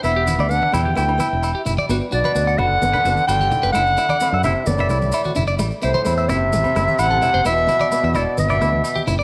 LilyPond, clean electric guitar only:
\new Staff \with { instrumentName = "Clean electric guitar" } { \time 4/4 \key g \major \tempo 4 = 130 e'16 g'16 e'16 d''16 r8 e'16 g'16 e'16 r16 e'16 r16 e'16 g'16 e'16 d''16 | fis'16 r16 fis'16 b'16 fis'16 fis''16 fis'16 r8 b'16 fis'16 r16 fis'16 g'16 r16 b'16 | e'16 r16 e'16 d''16 e'16 e''16 e'16 r8 e''16 e'16 r16 e'16 fis'16 e'16 d''16 | r8 e'16 c''16 e'16 e''16 e'16 r8. e'16 r16 e'16 a'16 e'16 c''16 |
e'16 r16 e'16 d''16 e'16 e''16 e'16 r8 d''16 e'16 r8 g'16 e'16 d''16 | }